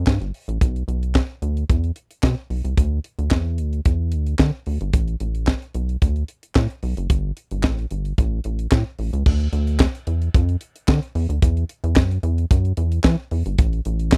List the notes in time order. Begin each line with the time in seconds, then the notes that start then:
0.07 G2, kick, snare, clap
0.21 G1, closed hi-hat
0.34 open hi-hat
0.48 A1, closed hi-hat
0.61 B1, kick, closed hi-hat
0.76 closed hi-hat
0.88 B1, closed hi-hat
1.03 closed hi-hat
1.15 kick, snare, clap
1.42 D2, closed hi-hat
1.57 closed hi-hat
1.69 E2, kick, closed hi-hat
1.84 closed hi-hat
1.96 closed hi-hat
2.11 closed hi-hat
2.23 B2, kick, snare, clap
2.50 B1, open hi-hat
2.65 C2, closed hi-hat
2.77 D2, kick, closed hi-hat
3.04 closed hi-hat
3.19 D2, closed hi-hat
3.31 E2, kick, snare, clap
3.58 D2, closed hi-hat
3.73 closed hi-hat
3.85 E2, kick, closed hi-hat
4.12 D2, closed hi-hat
4.27 closed hi-hat
4.39 D3, kick, snare, clap
4.66 D2, open hi-hat
4.81 G1, closed hi-hat
4.93 A1, kick, closed hi-hat
5.08 closed hi-hat
5.20 A1, closed hi-hat
5.35 closed hi-hat
5.47 kick, snare, clap
5.62 closed hi-hat
5.74 B1, closed hi-hat
5.89 closed hi-hat
6.02 D2, kick, closed hi-hat
6.16 closed hi-hat
6.28 closed hi-hat
6.43 closed hi-hat
6.55 A2, kick, snare, clap
6.70 closed hi-hat
6.83 B1, open hi-hat
6.97 F#1, closed hi-hat
7.10 G1, kick, closed hi-hat
7.37 closed hi-hat
7.51 G1, closed hi-hat
7.63 A1, kick, snare, clap
7.78 closed hi-hat
7.91 G1, closed hi-hat
8.05 closed hi-hat
8.18 A1, kick, closed hi-hat
8.44 A1, closed hi-hat
8.59 closed hi-hat
8.72 A2, kick, snare, clap
8.99 A1, open hi-hat
9.13 C#2, closed hi-hat
9.26 D2, kick, crash
9.40 closed hi-hat
9.53 D2, closed hi-hat
9.67 closed hi-hat
9.80 kick, snare, clap
9.95 closed hi-hat
10.07 E2, closed hi-hat
10.22 closed hi-hat
10.34 F2, kick, closed hi-hat
10.49 closed hi-hat
10.61 closed hi-hat
10.76 closed hi-hat
10.88 D3, kick, snare, clap
11.03 closed hi-hat
11.15 E2, open hi-hat
11.29 D2, closed hi-hat
11.42 E2, kick, closed hi-hat
11.57 closed hi-hat
11.69 closed hi-hat
11.84 E2, closed hi-hat
11.96 F#2, kick, snare, clap
12.11 closed hi-hat
12.23 E2, closed hi-hat
12.38 closed hi-hat
12.51 F#2, kick, closed hi-hat
12.65 closed hi-hat
12.77 E2, closed hi-hat
12.92 closed hi-hat
13.04 E3, kick, snare, clap
13.31 E2, open hi-hat
13.46 G1, closed hi-hat
13.58 A1, kick, closed hi-hat
13.73 closed hi-hat
13.85 A1, closed hi-hat
14.00 closed hi-hat
14.12 kick, snare, clap